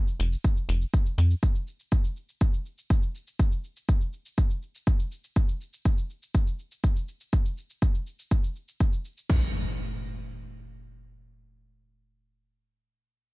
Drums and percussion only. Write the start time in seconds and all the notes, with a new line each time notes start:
0.08 shaker
0.20 open hi-hat, shaker
0.32 shaker
0.44 kick, shaker
0.57 shaker
0.69 open hi-hat, shaker
0.82 shaker
0.94 kick, shaker
1.06 shaker
1.18 open hi-hat, shaker
1.31 shaker
1.43 kick, shaker
1.55 shaker
1.67 shaker
1.80 shaker
1.92 kick, shaker
2.04 shaker
2.16 shaker
2.29 shaker
2.41 kick, shaker
2.54 shaker
2.66 shaker
2.78 shaker
2.90 kick, shaker
3.03 shaker
3.15 shaker
3.27 shaker
3.39 kick, shaker
3.52 shaker
3.64 shaker
3.76 shaker
3.89 kick, shaker
4.01 shaker
4.13 shaker
4.26 shaker
4.38 kick, shaker
4.50 shaker
4.62 shaker
4.75 shaker
4.87 kick, shaker
4.99 shaker
5.12 shaker
5.24 shaker
5.36 kick, shaker
5.49 shaker
5.61 shaker
5.73 shaker
5.85 kick, shaker
5.98 shaker
6.10 shaker
6.22 shaker
6.35 kick, shaker
6.47 shaker
6.59 shaker
6.72 shaker
6.84 kick, shaker
6.96 shaker
7.08 shaker
7.21 shaker
7.33 kick, shaker
7.45 shaker
7.57 shaker
7.70 shaker
7.82 kick, shaker
7.95 shaker
8.07 shaker
8.19 shaker
8.31 kick, shaker
8.44 shaker
8.56 shaker
8.68 shaker
8.80 kick, shaker
8.93 shaker
9.05 shaker
9.18 shaker
9.30 kick, crash